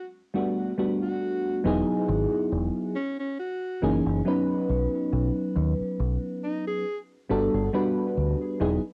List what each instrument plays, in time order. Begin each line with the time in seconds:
0.34 fm electric piano G3 A3 B3 D4 F#4
0.78 fm electric piano G3 A3 B3 D4 F#4
1.02 alto saxophone F#4
1.64 fingered electric bass E1, fm electric piano F#3 B3 D#4 E4 G#4
2.09 fingered electric bass G#1
2.52 fingered electric bass E1
2.95 alto saxophone C#4
3.19 alto saxophone C#4
3.39 alto saxophone F#4
3.82 fingered electric bass F#1, fm electric piano E3 A#3 C#4 D#4 G#4
4.06 fingered electric bass F#1
4.25 fm electric piano F#3 B3 C#4 D#4 B4
4.69 fingered electric bass B1
5.13 fingered electric bass B1
5.56 fingered electric bass D#2
5.80 muted fingered electric bass stroke
6.00 fingered electric bass B1
6.43 alto saxophone D#4
6.67 alto saxophone G#4
7.29 fingered electric bass G1, fm electric piano G3 B3 D4 F#4 A4
7.54 fingered electric bass G1
7.73 fm electric piano G3 B3 D4 F#4 B4
8.17 fingered electric bass D2
8.60 fingered electric bass E1, fm electric piano F#3 B3 D#4 E4 G#4